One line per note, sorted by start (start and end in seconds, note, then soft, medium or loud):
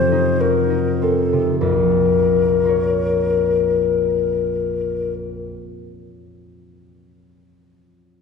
0.00 1.60 F2 soft
0.00 1.32 C3 soft
0.00 1.01 C4 soft
0.00 0.42 C5 soft
0.12 0.69 D#4 soft
0.40 1.65 F#4 soft
0.40 1.05 A#4 soft
0.70 1.65 D#4 soft
1.02 1.65 C4 soft
1.02 1.59 A4 soft
1.33 1.65 C3 soft
1.60 5.51 A#1 soft
1.60 5.51 F2 soft
1.60 5.14 A#4 soft
2.65 6.19 F4 soft
2.65 6.21 A#4 soft
2.65 6.23 C#5 soft